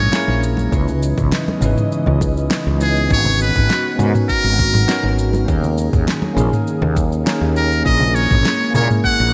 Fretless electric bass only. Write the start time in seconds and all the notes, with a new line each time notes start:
0.28 A#1
0.72 C#2
1.18 C#2
1.62 G#1
2.07 C#2
2.67 C#2
3.11 G#1
3.56 G#1
3.99 G#2
4.44 G#1
5.04 G#1
5.48 D#2
5.93 D#2
6.37 A#1
6.82 D#2
7.41 D#2
7.86 A#1
8.31 A#1
8.75 A#2
9.20 A#1